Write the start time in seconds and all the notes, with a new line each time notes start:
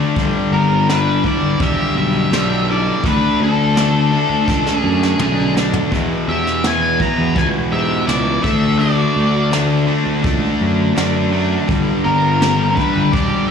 Already playing: D3 A3 D4
0.16 G1 G2 D3 G3, kick, open hi-hat
0.51 G1 B3 A#4
0.88 G2 D3 G3 D4 B4, snare, open hi-hat
1.24 G2 D3 G3 E4 D5, kick
1.41 G1
1.60 E1 G2 D3 G3 G4 E5, kick, open hi-hat
1.95 B1 G4 E5
2.31 B1 G2 D3 G3, snare, open hi-hat
2.67 G2 D3 G3 E4 D5
3.03 D2 D3 A3 D4 B4, kick, open hi-hat
3.40 D2 D4 A4
3.75 D3 A3 D4, snare, open hi-hat
4.11 D3 A3 D4
4.30 D2
4.47 C#2 D3 A3 D4, kick, snare
4.67 snare
4.75 C#4 G#4
4.84 F#2
5.03 snare
5.19 B1 D3 A3 D4, mid tom
5.56 D3 A3 D4, snare
5.73 floor tom
5.91 E2 B2 E3, kick, open hi-hat
6.28 E2 G4 E5
6.47 snare
6.64 E2 B2 E3 B4 G#5, snare
7.00 E2 B2 E3 B4 A#5, kick
7.18 E2
7.35 C#2 E2 B2 E3 B4 G#5, kick, open hi-hat
7.72 G#2 G4 E5
8.06 C#2 E2 B2 E3 E4 D5, snare, open hi-hat
8.42 D2 D3 A3 D4 A4 E5, kick
8.78 D3 A3 D4 F#4 D5, open hi-hat
9.16 D2
9.51 D3 A3 D4, snare, open hi-hat
9.87 D3 A3 D4
10.06 D2
10.23 C#2 D3 A3 D4, kick, open hi-hat
10.61 F#2
10.95 F#2 D3 A3 D4, snare, open hi-hat
11.32 D3 A3 D4
11.68 G1 G2 D3 G3, kick, open hi-hat
12.04 G1 B3 A#4
12.41 G2 D3 G3, snare
12.69 C#4 A#4
12.76 G2 D3 G3 D4 B4, kick
12.95 G1
13.12 E1 G2 D3 G3 G4 D5, kick, open hi-hat